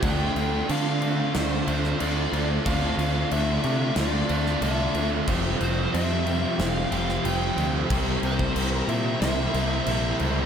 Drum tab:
CC |x-x-x-x-x-x-x-x-|x-x-x-x-x-x-x-x-|x-x-x-x-x-x-x-x-|x-x-x-x-x-x-x-x-|
SD |--------o--o----|--------o--o----|--------o--o----|--------o-------|
BD |o---------------|o---------------|o---------------|o--o------------|